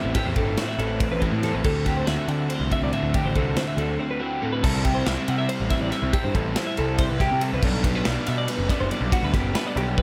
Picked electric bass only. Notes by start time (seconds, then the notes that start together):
0.04 A1
0.26 E2
0.37 G1
0.78 A1
1.11 A1
1.32 A2
1.54 A1
1.65 D2
2.07 D2
2.28 D3
2.60 C2
2.82 C2
3.02 D2
3.24 A1
3.36 C2
3.77 D2
4.64 C2
5.07 C2
5.28 C3
5.60 A1
5.81 A1
6.02 C2
6.24 G2
6.35 A1
6.79 C2
7.11 C2
7.31 C3
7.53 C2
7.63 B1
8.07 B1
8.28 B2
8.58 F#1
8.81 F#1
9.01 B1
9.23 D2
9.34 F#1
9.76 B1